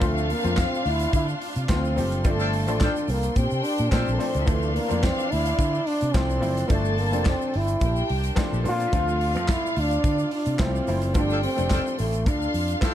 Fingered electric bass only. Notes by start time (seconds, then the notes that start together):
0.02 D2
0.45 F2
0.86 D2
1.14 D3
1.56 C3
1.69 D2
1.97 F#1
2.25 G1
2.68 A1
3.08 C2
3.37 A#2
3.52 C3
3.80 A#2
3.92 A#2
4.08 A#1
4.35 C#2
4.48 D2
4.91 F2
5.33 D2
5.59 D3
6.02 C3
6.15 C2
6.44 F#1
6.70 G1
7.14 F1
7.55 G1
7.81 A#1
8.10 C2
8.53 A#1
8.65 A#2
8.93 D2
9.36 F2
9.77 D2
10.04 D3
10.47 C3
10.60 C2
10.88 F#1
11.15 G1
11.59 F1
12.00 A1
12.27 D2
12.54 F2